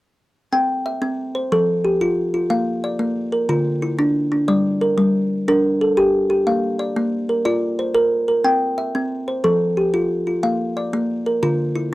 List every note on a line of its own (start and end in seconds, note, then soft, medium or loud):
0.53 0.85 C4 medium
0.53 1.02 G5 medium
0.86 1.35 E5 medium
1.02 1.35 C4 medium
1.35 1.68 C5 medium
1.52 1.85 F3 medium
1.52 2.01 A4 medium
1.85 2.34 G4 medium
2.01 2.33 F4 medium
2.34 2.67 F4 medium
2.50 2.83 A#3 medium
2.50 3.00 F5 medium
2.84 3.33 D5 medium
2.99 3.33 A#3 medium
3.32 3.66 A#4 medium
3.49 3.82 D3 medium
3.49 3.99 F4 medium
3.82 4.32 E4 medium
3.99 4.31 D4 medium
4.32 4.65 D4 medium
4.48 4.81 G3 medium
4.48 4.98 D5 medium
4.81 5.31 A#4 medium
4.98 5.31 G3 medium
5.48 5.81 D4 medium
5.48 5.98 A#4 medium
5.81 6.31 A4 medium
5.97 6.29 G4 medium
6.30 6.63 G4 medium
6.47 6.80 A#3 medium
6.47 6.96 F5 medium
6.79 7.29 D5 medium
6.96 7.29 A#3 medium
7.29 7.79 A#4 medium
7.45 7.79 F4 medium
7.45 7.95 D5 medium
7.79 8.28 C5 medium
7.95 8.27 A#4 medium
8.28 8.61 A#4 medium
8.44 8.78 C4 medium
8.44 8.94 G5 medium
8.78 9.27 E5 medium
8.95 9.28 C4 medium
9.28 9.61 C5 medium
9.44 9.77 F3 medium
9.44 9.93 A4 medium
9.77 10.27 G4 medium
9.94 10.26 F4 medium
10.27 10.60 F4 medium
10.43 10.76 A#3 medium
10.43 10.93 F5 medium
10.77 11.26 D5 medium
10.93 11.26 A#3 medium
11.26 11.59 A#4 medium
11.43 11.75 D3 medium
11.43 11.92 F4 medium
11.76 11.94 E4 medium